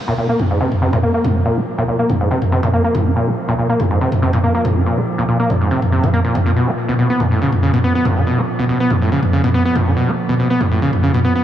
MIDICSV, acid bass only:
0, 0, Header, 1, 2, 480
1, 0, Start_track
1, 0, Key_signature, -5, "minor"
1, 0, Tempo, 425532
1, 1645, Time_signature, 4, 2, 24, 8
1, 12903, End_track
2, 0, Start_track
2, 0, Title_t, "Acid bass"
2, 0, Program_c, 0, 38
2, 89, Note_on_c, 0, 46, 105
2, 152, Note_off_c, 0, 46, 0
2, 203, Note_on_c, 0, 46, 82
2, 306, Note_off_c, 0, 46, 0
2, 328, Note_on_c, 0, 58, 75
2, 445, Note_on_c, 0, 44, 97
2, 461, Note_off_c, 0, 58, 0
2, 513, Note_off_c, 0, 44, 0
2, 568, Note_on_c, 0, 44, 74
2, 664, Note_off_c, 0, 44, 0
2, 684, Note_on_c, 0, 48, 92
2, 787, Note_off_c, 0, 48, 0
2, 923, Note_on_c, 0, 48, 102
2, 1026, Note_off_c, 0, 48, 0
2, 1048, Note_on_c, 0, 46, 96
2, 1112, Note_off_c, 0, 46, 0
2, 1164, Note_on_c, 0, 58, 81
2, 1267, Note_off_c, 0, 58, 0
2, 1288, Note_on_c, 0, 58, 77
2, 1402, Note_on_c, 0, 44, 99
2, 1419, Note_off_c, 0, 58, 0
2, 1527, Note_on_c, 0, 49, 96
2, 1544, Note_off_c, 0, 44, 0
2, 1591, Note_off_c, 0, 49, 0
2, 1643, Note_on_c, 0, 46, 86
2, 1767, Note_on_c, 0, 61, 77
2, 1784, Note_off_c, 0, 46, 0
2, 1806, Note_off_c, 0, 61, 0
2, 2008, Note_on_c, 0, 46, 97
2, 2072, Note_off_c, 0, 46, 0
2, 2123, Note_on_c, 0, 46, 77
2, 2226, Note_off_c, 0, 46, 0
2, 2247, Note_on_c, 0, 58, 73
2, 2363, Note_on_c, 0, 44, 99
2, 2380, Note_off_c, 0, 58, 0
2, 2432, Note_off_c, 0, 44, 0
2, 2488, Note_on_c, 0, 44, 74
2, 2584, Note_off_c, 0, 44, 0
2, 2604, Note_on_c, 0, 48, 100
2, 2707, Note_off_c, 0, 48, 0
2, 2843, Note_on_c, 0, 48, 106
2, 2946, Note_off_c, 0, 48, 0
2, 2968, Note_on_c, 0, 46, 96
2, 3032, Note_off_c, 0, 46, 0
2, 3083, Note_on_c, 0, 58, 86
2, 3186, Note_off_c, 0, 58, 0
2, 3208, Note_on_c, 0, 58, 76
2, 3323, Note_on_c, 0, 44, 91
2, 3340, Note_off_c, 0, 58, 0
2, 3448, Note_on_c, 0, 49, 100
2, 3465, Note_off_c, 0, 44, 0
2, 3512, Note_off_c, 0, 49, 0
2, 3564, Note_on_c, 0, 46, 89
2, 3689, Note_on_c, 0, 61, 77
2, 3706, Note_off_c, 0, 46, 0
2, 3727, Note_off_c, 0, 61, 0
2, 3928, Note_on_c, 0, 46, 99
2, 3992, Note_off_c, 0, 46, 0
2, 4044, Note_on_c, 0, 46, 79
2, 4147, Note_off_c, 0, 46, 0
2, 4168, Note_on_c, 0, 58, 77
2, 4284, Note_on_c, 0, 44, 103
2, 4301, Note_off_c, 0, 58, 0
2, 4352, Note_off_c, 0, 44, 0
2, 4409, Note_on_c, 0, 44, 72
2, 4504, Note_off_c, 0, 44, 0
2, 4524, Note_on_c, 0, 48, 95
2, 4627, Note_off_c, 0, 48, 0
2, 4764, Note_on_c, 0, 48, 107
2, 4867, Note_off_c, 0, 48, 0
2, 4888, Note_on_c, 0, 46, 99
2, 4952, Note_off_c, 0, 46, 0
2, 5004, Note_on_c, 0, 58, 77
2, 5107, Note_off_c, 0, 58, 0
2, 5128, Note_on_c, 0, 58, 80
2, 5243, Note_on_c, 0, 44, 94
2, 5260, Note_off_c, 0, 58, 0
2, 5367, Note_on_c, 0, 49, 100
2, 5384, Note_off_c, 0, 44, 0
2, 5431, Note_off_c, 0, 49, 0
2, 5483, Note_on_c, 0, 46, 85
2, 5607, Note_on_c, 0, 61, 72
2, 5624, Note_off_c, 0, 46, 0
2, 5646, Note_off_c, 0, 61, 0
2, 5847, Note_on_c, 0, 46, 100
2, 5911, Note_off_c, 0, 46, 0
2, 5963, Note_on_c, 0, 46, 78
2, 6066, Note_off_c, 0, 46, 0
2, 6087, Note_on_c, 0, 58, 75
2, 6202, Note_on_c, 0, 44, 99
2, 6219, Note_off_c, 0, 58, 0
2, 6272, Note_off_c, 0, 44, 0
2, 6327, Note_on_c, 0, 44, 75
2, 6423, Note_off_c, 0, 44, 0
2, 6442, Note_on_c, 0, 48, 99
2, 6546, Note_off_c, 0, 48, 0
2, 6682, Note_on_c, 0, 48, 79
2, 6806, Note_on_c, 0, 53, 93
2, 6822, Note_off_c, 0, 48, 0
2, 6871, Note_off_c, 0, 53, 0
2, 6921, Note_on_c, 0, 58, 79
2, 6991, Note_off_c, 0, 58, 0
2, 7045, Note_on_c, 0, 46, 79
2, 7161, Note_on_c, 0, 49, 73
2, 7178, Note_off_c, 0, 46, 0
2, 7204, Note_off_c, 0, 49, 0
2, 7285, Note_on_c, 0, 46, 97
2, 7351, Note_off_c, 0, 46, 0
2, 7401, Note_on_c, 0, 47, 85
2, 7527, Note_on_c, 0, 62, 76
2, 7544, Note_off_c, 0, 47, 0
2, 7566, Note_off_c, 0, 62, 0
2, 7766, Note_on_c, 0, 47, 97
2, 7831, Note_off_c, 0, 47, 0
2, 7883, Note_on_c, 0, 47, 78
2, 7986, Note_off_c, 0, 47, 0
2, 8007, Note_on_c, 0, 59, 78
2, 8123, Note_on_c, 0, 45, 92
2, 8140, Note_off_c, 0, 59, 0
2, 8192, Note_off_c, 0, 45, 0
2, 8247, Note_on_c, 0, 45, 72
2, 8343, Note_off_c, 0, 45, 0
2, 8363, Note_on_c, 0, 49, 97
2, 8466, Note_off_c, 0, 49, 0
2, 8604, Note_on_c, 0, 49, 106
2, 8706, Note_off_c, 0, 49, 0
2, 8728, Note_on_c, 0, 47, 99
2, 8792, Note_off_c, 0, 47, 0
2, 8844, Note_on_c, 0, 59, 81
2, 8947, Note_off_c, 0, 59, 0
2, 8970, Note_on_c, 0, 59, 74
2, 9084, Note_on_c, 0, 45, 94
2, 9101, Note_off_c, 0, 59, 0
2, 9208, Note_on_c, 0, 50, 98
2, 9225, Note_off_c, 0, 45, 0
2, 9272, Note_off_c, 0, 50, 0
2, 9324, Note_on_c, 0, 47, 84
2, 9448, Note_on_c, 0, 62, 75
2, 9465, Note_off_c, 0, 47, 0
2, 9487, Note_off_c, 0, 62, 0
2, 9689, Note_on_c, 0, 47, 99
2, 9752, Note_off_c, 0, 47, 0
2, 9804, Note_on_c, 0, 47, 76
2, 9907, Note_off_c, 0, 47, 0
2, 9930, Note_on_c, 0, 59, 76
2, 10045, Note_on_c, 0, 45, 100
2, 10062, Note_off_c, 0, 59, 0
2, 10113, Note_off_c, 0, 45, 0
2, 10170, Note_on_c, 0, 45, 72
2, 10265, Note_off_c, 0, 45, 0
2, 10284, Note_on_c, 0, 49, 95
2, 10387, Note_off_c, 0, 49, 0
2, 10524, Note_on_c, 0, 49, 106
2, 10627, Note_off_c, 0, 49, 0
2, 10649, Note_on_c, 0, 47, 97
2, 10712, Note_off_c, 0, 47, 0
2, 10764, Note_on_c, 0, 59, 83
2, 10867, Note_off_c, 0, 59, 0
2, 10889, Note_on_c, 0, 59, 76
2, 11005, Note_on_c, 0, 45, 92
2, 11022, Note_off_c, 0, 59, 0
2, 11127, Note_on_c, 0, 50, 105
2, 11144, Note_off_c, 0, 45, 0
2, 11192, Note_off_c, 0, 50, 0
2, 11244, Note_on_c, 0, 47, 85
2, 11368, Note_on_c, 0, 62, 77
2, 11384, Note_off_c, 0, 47, 0
2, 11406, Note_off_c, 0, 62, 0
2, 11607, Note_on_c, 0, 47, 99
2, 11671, Note_off_c, 0, 47, 0
2, 11723, Note_on_c, 0, 47, 76
2, 11826, Note_off_c, 0, 47, 0
2, 11847, Note_on_c, 0, 59, 76
2, 11962, Note_on_c, 0, 45, 98
2, 11979, Note_off_c, 0, 59, 0
2, 12031, Note_off_c, 0, 45, 0
2, 12087, Note_on_c, 0, 45, 75
2, 12183, Note_off_c, 0, 45, 0
2, 12203, Note_on_c, 0, 49, 95
2, 12306, Note_off_c, 0, 49, 0
2, 12443, Note_on_c, 0, 49, 107
2, 12546, Note_off_c, 0, 49, 0
2, 12568, Note_on_c, 0, 47, 102
2, 12632, Note_off_c, 0, 47, 0
2, 12684, Note_on_c, 0, 59, 82
2, 12787, Note_off_c, 0, 59, 0
2, 12808, Note_on_c, 0, 59, 80
2, 12903, Note_off_c, 0, 59, 0
2, 12903, End_track
0, 0, End_of_file